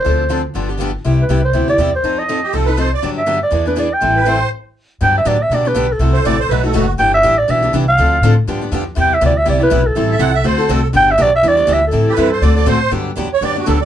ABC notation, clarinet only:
X:1
M:4/4
L:1/8
Q:"Swing" 1/4=242
K:G
V:1 name="Clarinet"
c3 z4 z | z B2 c2 d2 c- | c _e3 z4 | z e2 d2 B d g- |
g3 z4 z | g e d e d B2 A- | A4- A z3 | g e2 d e2 z =f- |
=f3 z4 z | g e d e d B2 A- | A4- A z3 | g e d e d2 e A- |
A6- A z | z8 |]